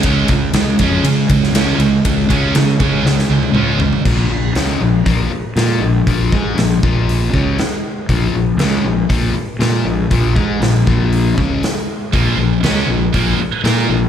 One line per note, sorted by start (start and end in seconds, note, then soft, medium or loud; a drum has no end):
0.03 0.23 C#2 medium
0.03 0.28 C#3 medium
0.03 0.28 G#3 medium
0.03 0.29 C#4 loud
0.03 kick loud
0.03 ride medium
0.28 0.49 C#2 medium
0.28 0.52 C#3 medium
0.28 0.53 G#3 medium
0.28 kick medium
0.28 ride medium
0.53 0.73 C#2 medium
0.53 0.77 C#3 medium
0.53 0.77 G#3 medium
0.53 snare medium
0.53 ride medium
0.79 0.99 F2 medium
0.79 1.03 C#3 medium
0.79 1.03 G#3 medium
0.79 1.03 C#4 medium
0.79 kick medium
0.79 ride medium
1.03 1.23 C#3 medium
1.03 1.27 C#3 medium
1.03 1.28 G#3 medium
1.03 ride medium
1.29 1.49 C#2 medium
1.29 1.52 C#3 medium
1.29 1.52 G#3 medium
1.29 kick medium
1.29 ride medium
1.43 snare soft
1.53 1.73 C#2 medium
1.53 1.78 C#3 loud
1.53 1.79 G#3 medium
1.53 1.79 C#4 loud
1.53 snare medium
1.53 ride medium
1.78 1.98 C#2 medium
1.78 2.02 C#3 medium
1.78 2.03 G#3 medium
1.78 ride medium
2.04 2.24 C#2 loud
2.04 2.28 C#3 medium
2.04 2.28 G#3 medium
2.04 kick medium
2.04 ride medium
2.29 2.49 C#2 medium
2.29 2.54 C#3 medium
2.29 2.54 G#3 medium
2.29 2.54 C#4 medium
2.29 kick medium
2.29 ride medium
2.55 2.75 C#3 medium
2.55 2.78 C#3 medium
2.55 2.78 G#3 medium
2.55 snare loud
2.55 ride medium
2.79 2.99 C#3 medium
2.79 3.04 C#3 medium
2.79 3.05 G#3 medium
2.79 3.05 C#4 medium
2.79 kick medium
2.79 ride medium
3.03 3.24 C#2 medium
3.03 3.28 C#3 medium
3.03 3.28 G#3 medium
3.03 snare medium
3.19 snare soft
3.29 3.49 C#2 medium
3.29 3.53 C#3 medium
3.29 3.54 G#3 medium
3.43 high tom medium
3.53 3.74 C#2 medium
3.53 3.79 C#3 medium
3.53 3.80 G#3 medium
3.53 3.80 C#4 loud
3.53 mid tom medium
3.77 3.98 G#1 medium
3.77 floor tom medium
3.81 4.04 C#3 medium
3.81 4.04 G#3 medium
3.93 floor tom medium
4.05 4.29 A#1 medium
4.05 4.30 A#2 medium
4.05 4.30 F3 medium
4.05 4.30 A#3 medium
4.05 kick medium
4.05 crash medium
4.29 4.54 A#1 medium
4.29 4.51 A#2 medium
4.29 4.51 F3 medium
4.55 4.79 C#2 medium
4.55 4.80 C#3 medium
4.55 4.80 G#3 medium
4.55 4.81 C#4 medium
4.55 snare medium
4.55 open hi-hat soft
4.80 5.04 A#1 medium
4.80 5.01 A#2 soft
4.80 5.02 F3 medium
5.05 5.29 A#1 medium
5.05 5.30 A#2 medium
5.05 5.31 F3 medium
5.05 5.31 A#3 medium
5.05 kick medium
5.05 open hi-hat soft
5.30 muted fingered electric bass stroke soft
5.30 muted distorted electric guitar stroke soft
5.56 5.80 A#2 medium
5.56 5.82 A#3 medium
5.56 5.82 F4 medium
5.56 5.82 A#4 medium
5.56 snare medium
5.56 open hi-hat soft
5.81 6.05 A#1 medium
5.81 6.03 A#2 medium
5.81 6.03 F3 medium
6.06 6.30 A#1 medium
6.06 6.32 A#2 medium
6.06 6.32 F3 medium
6.06 6.32 A#3 medium
6.06 kick medium
6.06 open hi-hat soft
6.32 6.55 G#2 medium
6.32 6.57 G#3 medium
6.32 6.58 D#4 medium
6.32 6.58 G#4 medium
6.32 kick medium
6.55 6.80 A#1 medium
6.55 6.79 A#2 medium
6.55 6.79 F3 medium
6.55 snare medium
6.55 open hi-hat soft
6.83 7.30 A#1 medium
6.83 7.33 A#2 medium
6.83 7.33 F3 medium
6.83 7.33 A#3 medium
6.83 kick loud
7.09 open hi-hat soft
7.33 7.57 C#2 medium
7.33 7.58 C#3 medium
7.33 7.59 G#3 medium
7.33 7.59 C#4 medium
7.33 kick medium
7.59 snare medium
7.59 open hi-hat soft
8.09 8.31 A#1 medium
8.09 8.34 A#2 medium
8.09 8.34 F3 medium
8.09 8.34 A#3 medium
8.09 kick medium
8.09 open hi-hat soft
8.32 8.56 A#1 medium
8.32 8.55 A#2 medium
8.32 8.55 F3 medium
8.57 8.82 C#2 medium
8.57 8.84 C#3 medium
8.57 8.85 G#3 medium
8.57 snare loud
8.57 open hi-hat soft
8.61 8.85 C#4 medium
8.83 9.07 A#1 medium
8.83 9.05 A#2 soft
8.83 9.05 F3 medium
9.09 9.33 A#1 medium
9.09 9.34 A#2 medium
9.09 9.34 F3 medium
9.09 9.34 A#3 medium
9.09 kick medium
9.09 open hi-hat soft
9.35 muted fingered electric bass stroke soft
9.35 muted distorted electric guitar stroke soft
9.59 9.83 A#2 medium
9.59 9.85 A#3 medium
9.59 9.85 F4 medium
9.59 9.85 A#4 loud
9.59 snare medium
9.59 open hi-hat soft
9.85 10.09 A#1 medium
9.85 10.07 A#2 medium
9.85 10.07 F3 medium
10.10 10.34 A#1 medium
10.10 10.35 A#2 medium
10.10 10.35 F3 medium
10.10 10.35 A#3 medium
10.10 kick medium
10.10 open hi-hat soft
10.35 10.59 G#2 medium
10.35 10.60 G#3 medium
10.35 10.60 D#4 medium
10.35 10.61 G#4 medium
10.35 kick medium
10.60 10.84 A#1 medium
10.60 10.82 A#2 medium
10.60 10.82 F3 medium
10.60 snare medium
10.60 open hi-hat soft
10.86 11.34 A#1 medium
10.86 11.36 A#2 medium
10.86 11.36 F3 medium
10.86 11.37 A#3 medium
10.86 kick medium
11.13 open hi-hat soft
11.37 11.61 C#2 medium
11.37 11.62 C#3 medium
11.37 11.62 G#3 medium
11.37 11.62 C#4 medium
11.37 kick medium
11.63 snare medium
11.63 open hi-hat soft
12.13 12.37 A#1 medium
12.13 12.37 A#2 medium
12.13 12.38 F3 medium
12.13 12.38 A#3 medium
12.13 kick medium
12.13 open hi-hat soft
12.37 12.61 A#1 medium
12.37 12.59 A#2 medium
12.37 12.59 F3 medium
12.63 12.87 C#2 medium
12.63 12.88 C#3 medium
12.63 12.88 G#3 medium
12.63 12.88 C#4 medium
12.63 snare medium
12.63 open hi-hat soft
12.88 13.12 A#1 medium
12.88 13.09 A#2 medium
12.88 13.10 F3 medium
13.13 13.37 A#1 medium
13.13 13.39 A#2 medium
13.13 13.39 F3 medium
13.13 13.39 A#3 medium
13.13 kick medium
13.13 open hi-hat soft
13.38 muted fingered electric bass stroke soft
13.38 muted distorted electric guitar stroke soft
13.64 13.87 A#2 medium
13.64 13.89 A#3 medium
13.64 13.89 F4 medium
13.64 13.89 A#4 loud
13.64 snare medium
13.64 open hi-hat soft
13.89 14.09 A#1 medium
13.89 14.09 A#2 medium
13.89 14.09 F3 medium